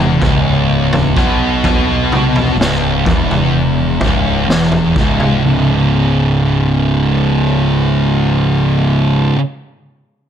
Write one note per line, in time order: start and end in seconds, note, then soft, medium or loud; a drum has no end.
0.00 0.17 E1 loud
0.00 0.20 E2 loud
0.21 1.12 C#1 loud
0.21 1.17 C#2 loud
0.21 kick loud
0.21 floor tom medium
0.93 floor tom medium
1.17 2.55 B1 medium
1.17 2.57 B2 medium
1.17 kick loud
1.64 kick loud
1.64 floor tom medium
2.12 mid tom medium
2.36 floor tom medium
2.58 3.02 C#1 medium
2.58 3.04 C#2 loud
2.58 snare medium
3.06 3.97 E1 medium
3.06 4.00 E2 loud
3.06 kick loud
3.06 floor tom medium
3.31 mid tom medium
4.01 4.45 C#1 medium
4.01 4.47 C#2 medium
4.01 kick loud
4.01 floor tom medium
4.46 4.92 E1 medium
4.46 4.95 E2 loud
4.46 snare medium
4.72 floor tom medium
4.96 5.40 C#1 medium
4.96 5.43 C#2 loud
4.96 kick loud
5.20 mid tom medium
5.43 9.29 C#1 medium
5.43 9.34 C#2 medium
5.43 9.36 G#2 medium
5.49 9.38 C#3 medium